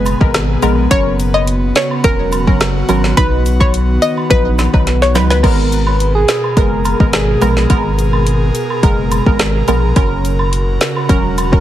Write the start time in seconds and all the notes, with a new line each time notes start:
Already playing: F#1 B2 G#3 B3 G#4 B4
0.06 closed hi-hat, cabasa, high woodblock
0.21 G#1 G#3 B3 A#4, kick
0.34 cross-stick, snare, closed hi-hat
0.62 A#1 G#3 B3 A#4, closed hi-hat, cabasa, high woodblock
0.91 F#1 C#3 F#3 C#4 F#4 A#4 C#5, kick, closed hi-hat, high woodblock
1.20 closed hi-hat, cabasa
1.34 D#5, high woodblock
1.47 closed hi-hat
1.75 C#5, snare, closed hi-hat, cabasa
1.91 high woodblock
2.04 E1 F#3 C#4 A#4, kick, closed hi-hat
2.32 closed hi-hat, cabasa, high woodblock
2.47 F#1 F#3 C#4 A#4, kick
2.61 cross-stick, snare, closed hi-hat
2.89 G#1 F#3 C#4 A#4, closed hi-hat, cabasa, high woodblock
3.04 snare
3.17 B1 D#3 F#3 B3 D#4 B4, kick, closed hi-hat, high woodblock
3.46 closed hi-hat, cabasa
3.60 C#5, kick, high woodblock
3.74 closed hi-hat
4.02 D#5, closed hi-hat, cabasa
4.17 high woodblock
4.30 A#1 F#3 D#4 B4, kick, closed hi-hat
4.58 snare, closed hi-hat, cabasa, high woodblock
4.73 B1 F#3 D#4 B4, kick
4.87 snare, closed hi-hat
5.02 C#5, snare
5.15 C#2 F#3 D#4 B4, snare, closed hi-hat, cabasa, high woodblock
5.30 B4, snare
5.43 G#1 B2 G#3 B3 G#4 A#4, kick, crash, high woodblock
5.72 closed hi-hat, cabasa
5.87 B4, high woodblock
6.00 closed hi-hat
6.15 G#4
6.28 snare, closed hi-hat, cabasa
6.44 high woodblock
6.57 F#1 G#3 B3 A#4, kick, closed hi-hat
6.85 A#4, closed hi-hat, cabasa, high woodblock
7.00 G#1 G#3 B3 A#4, kick
7.13 G#4, cross-stick, snare, closed hi-hat
7.41 A#1 G#3 B3 A#4, closed hi-hat, cabasa, high woodblock
7.57 snare
7.70 G#1 G#3 B3 A#4, kick, closed hi-hat, high woodblock
7.99 closed hi-hat, cabasa
8.13 high woodblock
8.27 closed hi-hat
8.55 closed hi-hat, cabasa
8.70 high woodblock
8.83 F#1 G#3 B3 A#4, kick, closed hi-hat
9.11 closed hi-hat, cabasa, high woodblock
9.26 G#1 G#3 B3 A#4, kick
9.39 cross-stick, snare, closed hi-hat
9.68 A#1 G#3 B3 A#4, closed hi-hat, cabasa, high woodblock
9.96 F#1 C#3 F#3 C#4 F#4 A#4, kick, closed hi-hat, high woodblock
10.25 closed hi-hat, cabasa
10.39 high woodblock
10.53 closed hi-hat
10.81 snare, closed hi-hat, cabasa
10.96 high woodblock
11.09 E1 F#3 C#4 A#4, kick, closed hi-hat
11.38 closed hi-hat, cabasa, high woodblock
11.52 F#1 F#3 C#4 A#4, kick